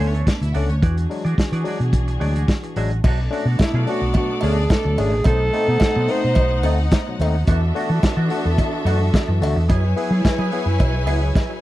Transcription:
Already playing: A3 B3 D4
0.00 D2 D3 A3 C#4 D4 A4 C#5, open hi-hat
0.14 D4 A4 C#5, closed hi-hat
0.27 A3 C#4 D4 D5, kick, snare, closed hi-hat
0.41 D2 B2 E4 E5, muted clean electric guitar stroke, closed hi-hat
0.54 C#2 D3 A3 C#4 D4 F#4 A4 D5 F#5, open hi-hat
0.69 D2 C#4 C#5, muted clean electric guitar stroke, closed hi-hat
0.81 E2 E3 D4 F#4 G#4 D5, kick, closed hi-hat
0.96 G#3 D4, muted clean electric guitar stroke, closed hi-hat
1.10 F#3 G#3 D4, muted clean electric guitar stroke, open hi-hat
1.25 E3 F#4 G#4 D5, closed hi-hat
1.36 G#3 D4, muted fingered electric bass stroke, kick, snare, closed hi-hat
1.51 E3 F#4 G#4 D5, closed hi-hat
1.64 F#3 G#3 D4 F#4 G#4 D5, open hi-hat
1.80 B2, muted clean electric guitar stroke, closed hi-hat
1.93 B1 E3, muted clean electric guitar stroke, kick, closed hi-hat
2.08 muted clean electric guitar stroke, closed hi-hat
2.20 D2 F#3 G#3 D4 F#4 G#4 D5, open hi-hat
2.35 G#3 D4 F#4 G#4 D5, closed hi-hat
2.47 G#3 D4, kick, snare, closed hi-hat
2.63 E3, muted clean electric guitar stroke, closed hi-hat
2.76 A1 F#3 G#3 D4 F#4 G#4 E5, open hi-hat
2.91 muted clean electric guitar stroke, closed hi-hat
3.04 B1 B2 F#3 A3 B3 D4 F#4 A4 D5, kick, crash, cowbell
3.19 C#4 D4, muted clean electric guitar stroke
3.31 A3 C#4 D4 F#4 A4, open hi-hat
3.45 B2 D4 F#4 A4
3.58 C#4 D4 E4, muted fingered electric bass stroke, muted clean electric guitar stroke, kick, snare, closed hi-hat, cowbell
3.73 B2 F#3 D4 F#4 A4
3.87 A3 C#4 D4 F#4 A4, open hi-hat
4.01 B1, muted clean electric guitar stroke
4.14 B2 F#3 F#4, muted clean electric guitar stroke, kick, closed hi-hat, cowbell
4.30 muted clean electric guitar stroke
4.41 D2 A3 C#4 D4 F#4 G#4 A4, open hi-hat, cowbell
4.57 C#4 D4, muted clean electric guitar stroke
4.70 C#4 D4 A4, muted clean electric guitar stroke, kick, snare, closed hi-hat, cowbell
4.84 D2 B2 F#3, muted clean electric guitar stroke
4.98 G#1 A3 C#4 D4 G#4, open hi-hat, cowbell
5.12 A1, muted clean electric guitar stroke
5.24 B1 B2 F#3 C4 D#4 A4 C5 F#5, kick, closed hi-hat, cowbell
5.40 C4 D#4, muted clean electric guitar stroke
5.53 A3 C4 D#4 A4, open hi-hat
5.68 B2 C4 D#4 A4
5.80 C4 D#4, muted clean electric guitar stroke, muted fingered electric bass stroke, kick, snare, closed hi-hat, cowbell
5.95 B2 F#3 C4 D#4 A4
6.08 A3 C4 D#4 A4 C5, open hi-hat
6.24 B2
6.35 B1 B2 F#3, muted clean electric guitar stroke, kick, closed hi-hat, cowbell
6.51 muted clean electric guitar stroke
6.63 D2 A3 C4 D#4 A4, open hi-hat, cowbell
6.79 C4 D#4, muted clean electric guitar stroke
6.91 C4 D#4, muted clean electric guitar stroke, kick, snare, closed hi-hat, cowbell
7.07 B2 F#3, muted clean electric guitar stroke
7.19 D#2 A3 C4 D#4, open hi-hat, cowbell
7.35 muted clean electric guitar stroke
7.47 E2 E3 B3 D4 F#4 A4 E5, kick, closed hi-hat, cowbell
7.62 D4 F#4, muted clean electric guitar stroke
7.75 A3 D4 F#4 A4, open hi-hat
7.89 E3 D4 F#4 A4
8.02 D4 F#4, muted clean electric guitar stroke, muted fingered electric bass stroke, kick, snare, closed hi-hat, cowbell
8.17 E3 D4 F#4 A4
8.30 A3 D4 F#4 A4, open hi-hat
8.45 E2, muted clean electric guitar stroke
8.58 E3, muted clean electric guitar stroke, kick, closed hi-hat, cowbell
8.73 muted clean electric guitar stroke
8.85 F#2 A3 D4 F#4 A4, open hi-hat, cowbell
9.01 D4 F#4, muted clean electric guitar stroke
9.13 D4 F#4, muted clean electric guitar stroke, kick, snare, closed hi-hat, cowbell
9.28 F#2 E3, muted clean electric guitar stroke
9.41 D2 A3 D4 F#4, open hi-hat, cowbell
9.56 E2, muted clean electric guitar stroke
9.69 F#2 F#3 B3 E4 G#4 B4 C#5 G#5, kick, closed hi-hat, cowbell
9.84 E4 G#4, muted clean electric guitar stroke
9.96 B3 E4 G#4, open hi-hat
10.11 F#3 B3 E4 G#4
10.24 E4 G#4, muted clean electric guitar stroke, muted fingered electric bass stroke, kick, snare, closed hi-hat, cowbell
10.39 F#3 B3 E4 G#4
10.51 B3 E4 G#4, open hi-hat
10.66 F#2, muted clean electric guitar stroke
10.79 B1 F#3, muted clean electric guitar stroke, kick, closed hi-hat, cowbell
10.94 muted clean electric guitar stroke
11.06 C#2 B3 E4 G#4, open hi-hat, cowbell
11.22 E4 G#4, muted clean electric guitar stroke
11.35 E4 G#4, muted clean electric guitar stroke, kick, snare, cowbell
11.49 F#3, muted clean electric guitar stroke

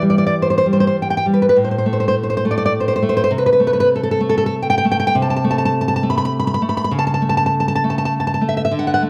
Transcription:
Already playing: E3
0.02 G3
0.10 D5
0.18 D5
0.26 D5
0.42 C5
0.50 C5
0.58 C5
0.66 G3
0.73 C5
0.80 C5
0.87 C5
1.02 G5
1.10 G5
1.17 G5
1.26 G3
1.34 B4
1.42 B4
1.49 B4
1.56 A2
1.64 C5
1.71 C5
1.78 C5
1.86 A3
1.93 C5
2.00 C5
2.08 C5
2.23 C5
2.30 C5
2.37 C5
2.45 A3
2.51 D5
2.58 D5
2.66 D5
2.80 C5
2.88 C5
2.96 C5
3.02 A3
3.09 C5
3.17 C5
3.24 C5
3.31 C3
3.38 B4
3.46 B4
3.53 B4
3.60 A3
3.67 B4
3.73 B4
3.80 B4
3.96 A4
4.03 A4
4.11 A4
4.20 A3
4.29 A4
4.38 A4
4.46 A4
4.62 G5
4.70 G5
4.78 G5
4.85 A3
4.92 G5
5.00 G5
5.07 G5
5.15 C3
5.22 A5
5.30 A5
5.36 A5
5.44 A3
5.51 A5
5.58 A5
5.65 A5
5.81 A5
5.88 A5
5.96 A5
6.03 A3
6.10 B5
6.18 B5
6.25 B5
6.40 B5
6.47 B5
6.54 B5
6.62 A3
6.69 B5
6.77 B5
6.84 B5
6.91 C#3
6.99 A5
7.07 A5
7.14 A5
7.22 A3
7.29 A5
7.37 A5
7.46 A5
7.60 A5
7.68 A5
7.75 A5
7.84 A3
7.90 A5
7.98 A5
8.05 A5
8.20 A5
8.27 A5
8.34 A5
8.41 A3
8.49 E5
8.57 E5
8.65 E5
8.71 D3
8.79 F#5
8.87 F#5
8.94 F#5
9.02 A3

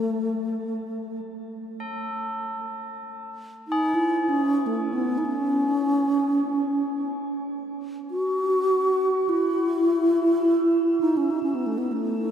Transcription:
Already playing: A3
1.80 A4
3.68 D#4
3.72 G#4
3.95 E4
4.29 C#4
4.66 A3
4.93 B3
5.18 D#4
5.25 C#4
8.11 F#4
9.29 E4
11.01 D#4
11.17 C#4
11.31 D#4
11.43 C#4
11.55 B3
11.66 A3
11.78 B3
11.92 A3

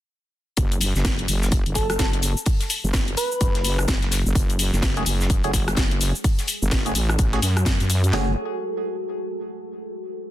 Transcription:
0.57 F#1 F#4 G#4 A4, kick, closed hi-hat, shaker
0.72 closed hi-hat, shaker
0.81 closed hi-hat, open hi-hat, shaker
0.95 F#1, snare, shaker
1.05 kick, snare, closed hi-hat, shaker
1.19 closed hi-hat
1.28 F#1, closed hi-hat, open hi-hat, shaker
1.42 snare, shaker
1.52 kick, closed hi-hat, shaker
1.66 F#1, closed hi-hat
1.75 A4, kick, closed hi-hat, open hi-hat, shaker
1.90 A4, cross-stick, closed hi-hat, shaker
1.99 F#1 A4, kick, snare, closed hi-hat, shaker
2.13 closed hi-hat
2.22 closed hi-hat, open hi-hat, shaker
2.37 shaker
2.46 kick, closed hi-hat, open hi-hat, shaker
2.60 snare, closed hi-hat, shaker
2.70 closed hi-hat, open hi-hat, shaker
2.84 F#1, shaker
2.93 kick, snare, closed hi-hat, shaker
3.08 closed hi-hat
3.17 B4, closed hi-hat, open hi-hat, shaker
3.32 shaker
3.41 F#1, kick, closed hi-hat, shaker
3.55 snare, closed hi-hat
3.65 closed hi-hat, open hi-hat, shaker
3.79 cross-stick, closed hi-hat, shaker
3.88 F#1, kick, snare, closed hi-hat, shaker
4.02 snare, closed hi-hat
4.11 snare, closed hi-hat, open hi-hat, shaker
4.26 F#1, shaker
4.35 F#1, kick, closed hi-hat, shaker
4.50 closed hi-hat, shaker
4.59 closed hi-hat, open hi-hat, shaker
4.73 F#1, snare, shaker
4.82 kick, snare, closed hi-hat, shaker
4.97 A3 C#4 F#4 G#4, closed hi-hat
5.06 F#1, closed hi-hat, open hi-hat, shaker
5.21 snare, shaker
5.30 kick, closed hi-hat, shaker
5.43 F#1 A3 C#4 F#4 G#4, closed hi-hat
5.54 kick, closed hi-hat, open hi-hat, shaker
5.68 cross-stick, closed hi-hat, shaker
5.77 F#1, kick, snare, closed hi-hat, shaker
5.91 closed hi-hat
6.01 closed hi-hat, open hi-hat, shaker
6.15 shaker
6.24 kick, closed hi-hat, open hi-hat, shaker
6.38 snare, closed hi-hat, shaker
6.47 closed hi-hat, open hi-hat, shaker
6.62 F#1, shaker
6.71 kick, snare, closed hi-hat, shaker
6.86 A3 C#4 F#4 G#4, closed hi-hat, shaker
6.95 A1, closed hi-hat, open hi-hat, shaker
7.09 cross-stick, shaker
7.18 kick, closed hi-hat, shaker
7.33 A3 C#4 F#4 G#4, snare, closed hi-hat
7.42 F#2, closed hi-hat, open hi-hat, shaker
7.57 cross-stick, closed hi-hat, shaker
7.65 kick, snare, closed hi-hat, shaker
7.80 F#2, snare, closed hi-hat, shaker
7.90 closed hi-hat, open hi-hat, shaker
8.04 closed hi-hat, shaker
8.13 F#1 A3 C#4 F#4 G#4, snare, clap

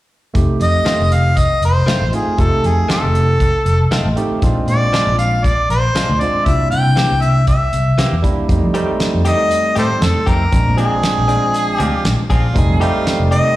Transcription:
0.34 F1 A3 C4 D#4 G4, kick, closed hi-hat
0.60 F2 D#5, closed hi-hat
0.85 D#3 A3 C4 F4, snare, closed hi-hat
1.00 F1
1.12 F5, closed hi-hat
1.37 D#5, kick, closed hi-hat
1.62 F1 C5, closed hi-hat
1.86 D#3 A3 C4 F4, snare, closed hi-hat
2.01 A1
2.12 A3 C4 D#4 F4 G#4, closed hi-hat
2.27 muted fingered electric bass stroke
2.38 F1 A3 C4 D#4 G4 A4, kick, closed hi-hat
2.64 F2 G#4, closed hi-hat
2.89 D#3 A3 C4 F4 A4, snare, closed hi-hat
3.03 F1
3.15 closed hi-hat
3.40 kick, closed hi-hat
3.66 F1, closed hi-hat
3.91 D#3 A3 C4 F4 D#5, snare, closed hi-hat
4.05 A1
4.16 A3 C4 D#4 G4 G5, closed hi-hat
4.31 muted fingered electric bass stroke
4.42 A#1 G#3 C4 D4 F4, kick, closed hi-hat
4.67 A#2 D5, closed hi-hat
4.93 F3 G#3 D4 F4, snare, closed hi-hat
5.07 A#1
5.19 F5, closed hi-hat
5.44 D5, kick, closed hi-hat
5.70 A#1 C5, closed hi-hat
5.95 F3 G#3 D4 F4, snare, closed hi-hat
6.09 D2
6.20 G#3 C4 D4 F4 D5, closed hi-hat
6.35 muted fingered electric bass stroke
6.46 C2 G3 A#3 D4 E4 E5, kick, closed hi-hat
6.71 C3 G5, closed hi-hat
6.96 E3 A#3 C4 G4, snare, closed hi-hat
7.11 C2
7.22 E5, closed hi-hat
7.47 E5, kick, closed hi-hat
7.73 C2, closed hi-hat
7.98 E3 A#3 C4 G4, snare, closed hi-hat
8.12 E2
8.22 G3 A#3 D4 E4, kick, closed hi-hat
8.38 muted fingered electric bass stroke
8.49 F2 G3 A3 C4 D#4, kick, closed hi-hat
8.63 F3
8.74 D#3 G3 A3 C4 D#4 G4, closed hi-hat
9.00 snare, closed hi-hat
9.14 F2
9.25 D#3 G3 A3 C4 D#4 G4 D#5, closed hi-hat
9.51 closed hi-hat
9.75 A2 D#3 A3 C4 G4 A4 C5, closed hi-hat
10.02 F2 A4, snare, closed hi-hat
10.26 F2 D#3 A3 C4 G4 A#4, kick, closed hi-hat
10.52 A#1 F3 G#3 C4 D4, kick, closed hi-hat
10.67 A#2
10.76 F3 G#3 C4 D4 G#4, closed hi-hat
11.03 snare, closed hi-hat
11.18 A#1
11.27 F3 G#3 C4 D4 G#4, closed hi-hat
11.54 G#4, closed hi-hat
11.74 G4
11.79 D2 F3 C4 D4 F4 G#4, closed hi-hat
12.05 A#1, snare, closed hi-hat
12.30 A#1 F3 C4 D4 F4 G#4, kick, closed hi-hat
12.54 F1 G3 A3 C4 D#4 G#4, kick, closed hi-hat
12.69 F2
12.80 D#3 G3 A3 C4 D#4 F4 G4, closed hi-hat
13.07 snare, closed hi-hat
13.20 F1
13.31 D#3 G3 A3 C4 D#4 G4 D#5, closed hi-hat

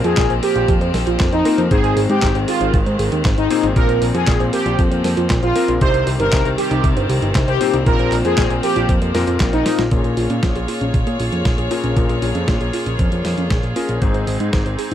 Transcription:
Already playing: A#2 F3 A#3 C4 F4 A#4
0.04 F2 F4 G#4, closed hi-hat
0.17 A#1, kick, snare, clap, closed hi-hat
0.30 A#1 C5, closed hi-hat
0.43 G4 A#4, open hi-hat
0.56 A#1 F4, closed hi-hat
0.68 F2, kick, closed hi-hat
0.81 F2 C5, closed hi-hat
0.94 A#1 A#4, snare, open hi-hat
1.07 A#1 F4, closed hi-hat
1.20 F2, kick, snare, clap, closed hi-hat
1.32 F2 D#4 C5, closed hi-hat
1.45 A#3 C4 F4 A#4, open hi-hat
1.58 F2 F4, closed hi-hat
1.71 G#1 G#2 D#3 G#3 C4 D#4 G#4 C5, kick, closed hi-hat
1.84 G#1 C5, closed hi-hat
1.97 G#1 G#4, open hi-hat
2.10 G#2 D#4 G4, closed hi-hat
2.22 G#1, kick, snare, clap, closed hi-hat
2.35 G#1 C5, closed hi-hat
2.48 F4 G#4, open hi-hat
2.61 G#1 D#4, closed hi-hat
2.74 G#1, kick, closed hi-hat
2.86 G#2 C5, closed hi-hat
2.99 G#1 G#4, open hi-hat
3.12 D#2 D#4, closed hi-hat
3.25 G#1, kick, snare, clap, closed hi-hat
3.38 G#1 D#4 C5, closed hi-hat
3.50 A#2 C4 D#4 G#4 C5, open hi-hat
3.63 G#1 D#4, closed hi-hat
3.76 A#1 A#2 F3 A#3 C4 F4 A#4, kick, closed hi-hat
3.89 A#1 C5, closed hi-hat
4.02 A#1 A#4, open hi-hat
4.15 F2 F4 G#4, closed hi-hat
4.27 A#1, kick, snare, clap, closed hi-hat
4.40 A#1 C5, closed hi-hat
4.53 G4 A#4, open hi-hat
4.66 A#1 F4, closed hi-hat
4.79 F2, kick, closed hi-hat
4.91 F2 C5, closed hi-hat
5.04 F2 A#4, snare, open hi-hat
5.17 F2 F4, closed hi-hat
5.30 A#1, kick, snare, clap, closed hi-hat
5.43 A#1 F4 C5, closed hi-hat
5.56 A#3 C4 F4 A#4, open hi-hat
5.68 A#1 F4, closed hi-hat
5.81 C2 C3 D#3 G3 C4 D#4 G4 C5, kick, closed hi-hat
5.94 C2 C5, closed hi-hat
6.07 C2 G4, open hi-hat
6.20 G1 D#4 A#4, closed hi-hat
6.33 C2, kick, snare, clap, closed hi-hat
6.45 C2 C5, closed hi-hat
6.58 G4, open hi-hat
6.71 C2 D#4, closed hi-hat
6.84 C2, kick, closed hi-hat
6.97 G1 C5, closed hi-hat
7.09 C2 G4, open hi-hat
7.22 G1 D#4, closed hi-hat
7.35 C2, kick, snare, clap, closed hi-hat
7.48 C2 G4 C5, closed hi-hat
7.61 A#2 C4 D#4 G4 C5, open hi-hat
7.74 C2 D#4, closed hi-hat
7.86 A#1 A#2 F3 A#3 C4 F4 A#4, kick, closed hi-hat
7.99 A#1 C5, closed hi-hat
8.12 A#1 A#4, clap, open hi-hat
8.25 F2 F4 G#4, closed hi-hat
8.38 A#1, kick, snare, clap, closed hi-hat
8.50 A#1 C5, closed hi-hat
8.63 G4 A#4, open hi-hat
8.76 A#1 F4, closed hi-hat
8.89 F2, kick, closed hi-hat
9.02 F2 C5, closed hi-hat
9.15 F2 A#2 A#3 C4 F4 A#4, snare, open hi-hat
9.27 F2 F4, closed hi-hat
9.40 A#1, kick, snare, clap, closed hi-hat
9.53 A#1 D#4 C5, closed hi-hat
9.66 A#2 A#3 C4 F4 A#4, snare, open hi-hat
9.79 A#1 F4, snare, closed hi-hat
9.91 A#1 A#2 A#3 C#4 F4 G#4 A#4 C#5, kick, closed hi-hat
10.04 A#1 G#4, closed hi-hat
10.17 A#1 F4, open hi-hat
10.30 A#2 C#4, closed hi-hat
10.43 A#1, kick, snare, closed hi-hat
10.56 A#1 G#4, closed hi-hat
10.68 F4, open hi-hat
10.81 A#1 C#4, closed hi-hat
10.94 A#1, kick, closed hi-hat
11.07 A#2 G#4, closed hi-hat
11.20 A#1 F4, open hi-hat
11.32 F2 C#4, closed hi-hat
11.45 A#1, kick, snare, closed hi-hat
11.58 A#1 G#4, closed hi-hat
11.71 A#2 C#4 F4 G#4 A#4, open hi-hat
11.84 A#1 C#4, closed hi-hat
11.97 A#1 A#2 C#4 F4 G#4 A#4, kick, closed hi-hat
12.09 A#1 G#4, closed hi-hat
12.22 A#1 F4, open hi-hat
12.35 F2 C#4, closed hi-hat
12.48 A#1, kick, snare, closed hi-hat
12.61 A#1 G#4, closed hi-hat
12.73 F4, open hi-hat
12.86 A#1 C#4, closed hi-hat
12.99 F2, kick, closed hi-hat
13.12 F2 G#4, closed hi-hat
13.25 F2 F4, snare, open hi-hat
13.38 F2 C#4, closed hi-hat
13.50 A#1, kick, snare, closed hi-hat
13.63 A#1 G#4, closed hi-hat
13.76 C#4 F4 G#4 A#4, open hi-hat
13.89 A#1 C#4, closed hi-hat
14.02 G#1 G#2 C4 D#4 G#4 C5, kick, closed hi-hat
14.14 G#1 C5, closed hi-hat
14.27 G#1 G#4, open hi-hat
14.40 G#2 D#4, closed hi-hat
14.53 G#1, kick, snare, closed hi-hat
14.66 G#1 C5, closed hi-hat
14.79 G#4, open hi-hat

